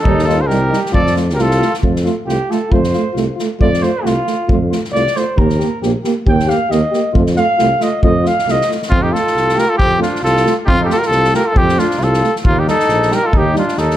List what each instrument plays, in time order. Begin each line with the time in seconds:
0.00 flugelhorn D#4, cornet A4
0.04 tuba D#2, euphonium G3, french horn D#4, kick
0.19 snare
0.24 french horn D#4, flugelhorn F4, cornet A4
0.28 euphonium G3, snare
0.41 flugelhorn A4, cornet C5
0.47 tuba C2, euphonium G3, french horn D#4, flugelhorn G4, cornet A#4, snare
0.69 euphonium G3, french horn D#4
0.73 snare
0.86 snare
0.92 tuba F2, euphonium A3, french horn F4, flugelhorn A4, cornet D5, kick
1.07 snare
1.14 euphonium A3, french horn F4, snare
1.30 flugelhorn G4, snare
1.34 tuba C2, euphonium A3, french horn F4, cornet A#4
1.38 flugelhorn F4, cornet A4, snare
1.51 snare
1.58 euphonium A3, french horn F4, snare
1.74 snare
1.82 tuba F2, euphonium A3, french horn F4, kick
1.96 snare
2.05 euphonium A3, french horn F4, snare
2.26 tuba C2, euphonium A3, french horn F4, flugelhorn G4, snare
2.49 euphonium A3, french horn F4, flugelhorn A4, snare
2.70 tuba F2, euphonium A3, french horn F4, flugelhorn C5, kick
2.84 snare
2.92 euphonium A3, french horn F4, snare
3.13 tuba C2, euphonium A3, french horn F4, snare
3.36 french horn F4, snare
3.40 euphonium A3
3.59 tuba F2, euphonium A3, french horn F4, flugelhorn D5, kick
3.74 snare
3.81 euphonium A3, french horn F4, flugelhorn C5, snare
4.03 tuba C2, euphonium A3, french horn F4, flugelhorn F4, snare
4.26 euphonium A3, french horn F4, snare
4.48 tuba F2, euphonium A3, french horn F4, kick
4.70 euphonium A3, french horn F4, snare
4.84 snare
4.93 tuba C2, euphonium A3, french horn F4, flugelhorn D5, snare
5.07 snare
5.15 euphonium A3, french horn F4, flugelhorn C5, snare
5.36 tuba D#2, euphonium A#3, french horn G4, flugelhorn A#4, kick
5.49 snare
5.58 euphonium A#3, french horn G4, snare
5.82 tuba A#1, euphonium A#3, french horn G4, snare
6.03 euphonium A#3, french horn G4, snare
6.26 tuba D#2, euphonium A#3, french horn G4, flugelhorn G5, kick
6.39 snare
6.48 euphonium A#3, french horn G4, flugelhorn F5, snare
6.69 tuba D#2, euphonium A#3, french horn G4, flugelhorn D#5, snare
6.91 euphonium A#3, french horn G4, snare
7.13 tuba F2, euphonium A3, french horn F4, kick
7.26 snare
7.34 euphonium A3, french horn F4, flugelhorn F5, snare
7.58 tuba C2, euphonium A3, french horn F4, snare
7.80 euphonium A3, french horn F4, flugelhorn D#5, snare
8.02 tuba F2, euphonium A3, french horn F4, flugelhorn D#5, kick
8.24 euphonium A3, french horn F4, flugelhorn F5, snare
8.39 snare
8.46 tuba C2, euphonium A3, french horn F4, snare
8.51 flugelhorn D#5
8.61 snare
8.67 euphonium A3, french horn F4
8.71 snare
8.82 snare
8.90 tuba F2, flugelhorn C4, cornet F4, kick
9.02 flugelhorn D#4, cornet G4
9.11 euphonium A3, french horn F4, flugelhorn F4, cornet A4, snare
9.27 snare
9.34 tuba C2, snare
9.49 snare
9.55 euphonium A3, french horn F4, flugelhorn G4, snare
9.59 cornet A#4
9.68 flugelhorn F4, cornet A4
9.78 tuba F2, flugelhorn C4, cornet G4, kick
9.99 euphonium A3, flugelhorn D4, french horn F4, cornet F4, snare
10.15 snare
10.22 tuba C2, flugelhorn F4, cornet A4, snare
10.37 snare
10.45 euphonium A3, french horn F4, snare
10.65 tuba F2, flugelhorn C4 D#4, cornet F4 G4, kick
10.80 flugelhorn D#4 F4, cornet A4
10.86 euphonium A3, flugelhorn F4, cornet G4
10.90 french horn F4, cornet A4, snare
10.97 flugelhorn G4, cornet A#4
11.02 flugelhorn F4, snare
11.07 tuba C2, cornet A4
11.11 snare
11.24 snare
11.33 euphonium A3, french horn F4, flugelhorn G4, cornet A#4, snare
11.46 flugelhorn F4, cornet A4
11.54 tuba F2, flugelhorn C4, cornet G4, kick
11.69 snare
11.78 euphonium A3, flugelhorn D4, french horn F4, cornet F4, snare
11.91 snare
11.98 tuba C2, flugelhorn F4, snare
12.03 cornet A4
12.14 snare
12.22 euphonium A3, french horn F4, snare
12.36 snare
12.45 tuba D#2, flugelhorn A#3, cornet F4, kick
12.58 flugelhorn D#4, cornet G4
12.67 euphonium G3, french horn D#4, flugelhorn D#4, cornet A4, snare
12.79 snare
12.88 tuba A#1, snare
13.02 snare
13.10 euphonium G3, french horn D#4, flugelhorn G4, snare
13.15 cornet A#4
13.24 flugelhorn F4, cornet A4
13.33 tuba D#2, flugelhorn D#4, kick
13.38 cornet G4
13.54 euphonium G3, flugelhorn D4, french horn D#4, snare
13.58 cornet F4
13.68 snare
13.77 tuba D#2, flugelhorn D#4, cornet A4, snare
13.91 snare